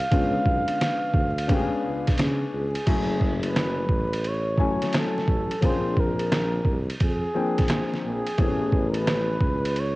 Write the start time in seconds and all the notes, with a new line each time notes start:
Already playing: F5
0.11 C#2 D3 G#3 B3 C#4 F4, kick, ride
0.45 B1, kick
0.68 ride
0.81 snare, hi-hat pedal, ride
1.14 D2, kick
1.38 ride
1.48 G#3 B3 C#4 D4 G4, kick, ride
1.56 G#4
1.84 C#2
2.07 kick, snare, ride
2.17 C#3, snare, hi-hat pedal, ride
2.53 C#2 G#4
2.75 ride
2.86 F#1 F#3 A3 C#4 E4 G#4, kick, crash, ride
3.21 kick
3.43 ride
3.47 B4
3.56 snare, hi-hat pedal, ride
3.89 A1, kick
4.13 ride
4.24 C#5, ride
4.58 F#3 A3 C#4 E4 G#5, kick
4.82 snare, ride
4.93 snare, hi-hat pedal, ride
4.97 A4
5.18 snare
5.28 A1, kick
5.51 ride
5.61 A#1 F3 A#3 C4 C#4 G#4, kick, ride
5.65 D4 C5
5.97 A#4, kick
6.19 ride
6.32 snare, hi-hat pedal, ride
6.65 C2, kick
6.90 ride
7.00 F2 G#4, kick, ride
7.34 F3 A#3 C4 D4 G5
7.58 kick, snare, ride
7.68 snare, hi-hat pedal, ride
7.94 snare
8.05 A#1 G#4
8.27 ride
8.38 A1 E3 A3 B3 C4 G#4, kick, ride
8.45 C#4
8.72 kick
8.90 A#4
8.94 ride
8.98 B4
9.07 snare, hi-hat pedal, ride
9.40 C#2, kick
9.65 ride
9.76 C#5, ride